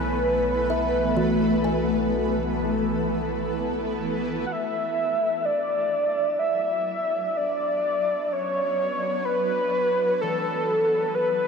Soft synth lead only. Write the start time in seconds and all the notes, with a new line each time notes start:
Already playing: B4
4.46 F#5
4.52 E5
5.45 D5
6.39 E5
7.37 D5
8.33 C#5
9.25 B4
10.21 A4
11.15 B4